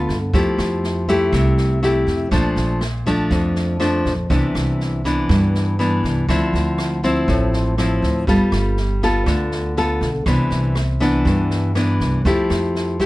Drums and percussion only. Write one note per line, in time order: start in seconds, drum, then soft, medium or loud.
0.09 kick soft
0.09 snare soft
0.33 kick medium
0.33 snare soft
0.58 cross-stick medium
0.58 snare soft
0.83 snare soft
1.08 kick soft
1.08 snare soft
1.32 kick medium
1.32 cross-stick medium
1.32 snare soft
1.57 snare soft
1.82 snare soft
2.07 kick soft
2.07 snare soft
2.31 kick medium
2.31 cross-stick medium
2.31 snare soft
2.56 snare soft
2.81 cross-stick medium
2.81 snare soft
3.06 kick soft
3.06 snare soft
3.31 kick medium
3.31 snare soft
3.55 snare soft
3.80 cross-stick medium
3.80 snare soft
4.05 kick soft
4.05 snare soft
4.30 kick medium
4.30 snare soft
4.55 cross-stick medium
4.55 snare soft
4.80 snare soft
5.04 kick soft
5.04 snare soft
5.29 kick medium
5.29 cross-stick medium
5.29 snare soft
5.54 snare soft
5.79 snare soft
6.04 kick soft
6.04 snare soft
6.29 kick medium
6.29 cross-stick medium
6.29 snare soft
6.54 snare soft
6.78 cross-stick medium
6.78 snare soft
7.03 kick soft
7.03 snare soft
7.28 kick medium
7.28 snare soft
7.53 snare soft
7.78 cross-stick medium
7.78 snare soft
8.03 kick soft
8.03 snare soft
8.27 kick medium
8.27 snare soft
8.52 cross-stick medium
8.52 snare soft
8.77 snare soft
9.02 kick soft
9.02 snare soft
9.26 kick medium
9.26 cross-stick medium
9.26 snare soft
9.51 snare soft
9.77 snare soft
10.01 kick soft
10.01 snare soft
10.26 kick medium
10.26 cross-stick medium
10.26 snare soft
10.51 snare soft
10.75 cross-stick medium
10.75 snare soft
11.01 kick soft
11.01 snare soft
11.26 kick medium
11.26 snare soft
11.50 snare soft
11.75 cross-stick medium
11.75 snare soft
12.00 kick soft
12.00 snare soft
12.25 kick medium
12.25 snare soft
12.50 cross-stick medium
12.50 snare soft
12.75 snare soft
13.00 kick soft
13.00 snare soft